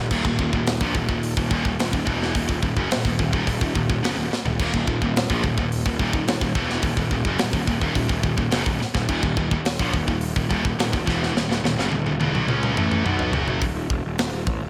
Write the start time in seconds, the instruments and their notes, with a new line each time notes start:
Already playing: distorted electric guitar D#2
0.00 distorted electric guitar A#2
0.11 picked electric bass D#1, distorted electric guitar D#2 A#2, kick, crash
0.24 picked electric bass D#1, distorted electric guitar D#2 A#2, kick
0.39 picked electric bass D#1, distorted electric guitar D#2 A#2, kick
0.53 picked electric bass D#1, distorted electric guitar D#2 A#2, kick
0.67 snare, open hi-hat
0.81 picked electric bass A#1, distorted electric guitar A#2 F3, kick
0.95 picked electric bass D#1, distorted electric guitar D#2 A#2, kick
1.09 picked electric bass D#1, distorted electric guitar D#2 A#2, kick
1.23 open hi-hat
1.37 picked electric bass D#1, distorted electric guitar D#2 A#2, kick
1.50 picked electric bass D#1, distorted electric guitar D#2 A#2, kick
1.65 picked electric bass D#1, distorted electric guitar D#2 A#2, kick
1.79 picked electric bass D#1, distorted electric guitar D#2 A#2, snare, open hi-hat
1.93 picked electric bass D#1, distorted electric guitar D#2 A#2, kick
2.05 picked electric bass E1, distorted electric guitar E2 B2 E3, kick
2.23 snare
2.35 picked electric bass D#1, distorted electric guitar D#2 A#2, kick, open hi-hat
2.48 picked electric bass D#1, distorted electric guitar D#2 A#2, kick
2.62 picked electric bass D#1, distorted electric guitar D#2 A#2, kick
2.76 picked electric bass F#1, distorted electric guitar F#2 C#3, kick
2.91 picked electric bass D#1, distorted electric guitar D#2 A#2, snare, open hi-hat
3.05 picked electric bass D#1, distorted electric guitar D#2 A#2, kick
3.19 picked electric bass D#1, distorted electric guitar D#2 A#2, kick
3.32 picked electric bass D#1, distorted electric guitar D#2 A#2, kick
3.47 picked electric bass D#1, distorted electric guitar D#2 A#2, kick, open hi-hat
3.61 picked electric bass D#1, distorted electric guitar D#2 A#2, kick
3.75 picked electric bass D#1, distorted electric guitar D#2 A#2, kick
3.89 picked electric bass D#1, distorted electric guitar D#2 A#2, kick
4.03 picked electric bass F#1, distorted electric guitar F#2 C#3, snare, open hi-hat
4.17 picked electric bass D#1, distorted electric guitar D#2 A#2
4.31 muted distorted electric guitar stroke, muted picked electric bass stroke, snare
4.45 picked electric bass D#1, distorted electric guitar D#2 A#2, floor tom
4.59 picked electric bass D#1, distorted electric guitar D#2 A#2, kick, crash
4.73 picked electric bass D#1, distorted electric guitar D#2 A#2, kick
4.87 picked electric bass D#1, distorted electric guitar D#2 A#2, kick
5.02 picked electric bass D#1, distorted electric guitar D#2 A#2, kick
5.16 snare, open hi-hat
5.30 picked electric bass A#1, distorted electric guitar A#2 F3, kick
5.43 picked electric bass D#1, distorted electric guitar D#2 A#2, kick
5.58 picked electric bass D#1, distorted electric guitar D#2 A#2, kick
5.72 open hi-hat
5.86 picked electric bass D#1, distorted electric guitar D#2 A#2, kick
5.99 picked electric bass D#1, distorted electric guitar D#2 A#2, kick
6.13 picked electric bass D#1, distorted electric guitar D#2 A#2, kick
6.27 picked electric bass D#1, distorted electric guitar D#2 A#2, snare, open hi-hat
6.41 picked electric bass D#1, distorted electric guitar D#2 A#2, kick
6.55 picked electric bass E1, distorted electric guitar E2 B2 E3, kick
6.70 snare
6.82 picked electric bass D#1, distorted electric guitar D#2 A#2, kick, open hi-hat
6.96 picked electric bass D#1, distorted electric guitar D#2 A#2, kick
7.11 picked electric bass D#1, distorted electric guitar D#2 A#2, kick
7.25 picked electric bass F#1, distorted electric guitar F#2 C#3, kick
7.39 picked electric bass D#1, distorted electric guitar D#2 A#2, snare, open hi-hat
7.53 picked electric bass D#1, distorted electric guitar D#2 A#2, kick
7.67 picked electric bass D#1, distorted electric guitar D#2 A#2, kick
7.81 picked electric bass D#1, distorted electric guitar D#2 A#2, kick
7.95 picked electric bass D#1, distorted electric guitar D#2 A#2, kick, open hi-hat
8.08 picked electric bass D#1, distorted electric guitar D#2 A#2, kick
8.23 picked electric bass D#1, distorted electric guitar D#2 A#2, kick
8.37 picked electric bass D#1, distorted electric guitar D#2 A#2, kick
8.51 picked electric bass F#1, distorted electric guitar F#2 C#3, snare, open hi-hat
8.66 picked electric bass D#1, distorted electric guitar D#2 A#2, kick
8.79 muted distorted electric guitar stroke, muted picked electric bass stroke, snare
8.94 picked electric bass D#1, distorted electric guitar D#2 A#2, kick, snare
9.09 picked electric bass D#1, distorted electric guitar D#2 A#2, kick, crash
9.23 picked electric bass D#1, distorted electric guitar D#2 A#2, kick
9.37 picked electric bass D#1, distorted electric guitar D#2 A#2, kick
9.51 picked electric bass D#1, distorted electric guitar D#2 A#2, kick
9.65 snare, open hi-hat
9.79 picked electric bass A#1, distorted electric guitar A#2 F3, kick
9.93 picked electric bass D#1, distorted electric guitar D#2 A#2, kick
10.07 picked electric bass D#1, distorted electric guitar D#2 A#2, kick
10.21 open hi-hat
10.36 picked electric bass D#1, distorted electric guitar D#2 A#2, kick
10.50 picked electric bass D#1, distorted electric guitar D#2 A#2, kick
10.65 picked electric bass D#1, distorted electric guitar D#2 A#2, kick
10.78 picked electric bass D#1, distorted electric guitar D#2 A#2, snare, open hi-hat
10.92 picked electric bass D#1, distorted electric guitar D#2 A#2, kick
11.06 picked electric bass E1, distorted electric guitar E2 B2 E3, kick, snare
11.23 snare
11.35 picked electric bass D#1, distorted electric guitar D#2 A#2, snare
11.49 picked electric bass D#1, distorted electric guitar D#2 A#2, snare
11.63 picked electric bass D#1, distorted electric guitar D#2 A#2, snare
11.78 picked electric bass F#1, distorted electric guitar F#2 C#3, snare
11.91 picked electric bass D#1, distorted electric guitar D#2 A#2, high tom
12.06 picked electric bass D#1, distorted electric guitar D#2 A#2, high tom
12.20 picked electric bass E1, distorted electric guitar E2 B2, high tom
12.33 picked electric bass B1, distorted electric guitar B2 F#3, mid tom
12.48 picked electric bass C#2, distorted electric guitar C#3 G#3 C#4, mid tom
12.63 mid tom
12.75 picked electric bass A1, distorted electric guitar A2 E3 A3, mid tom
12.91 mid tom
13.04 picked electric bass B1, distorted electric guitar B2 F#3 B3, mid tom
13.19 floor tom
13.32 picked electric bass F#1, distorted electric guitar F#2 C#3 F#3, floor tom
13.48 floor tom
13.62 picked electric bass D#1, kick, open hi-hat
13.75 picked electric bass D#1
13.90 picked electric bass E1, kick
14.04 picked electric bass D#1
14.18 picked electric bass D#1, snare, open hi-hat
14.32 picked electric bass D#1
14.47 picked electric bass A1, kick
14.61 picked electric bass D#1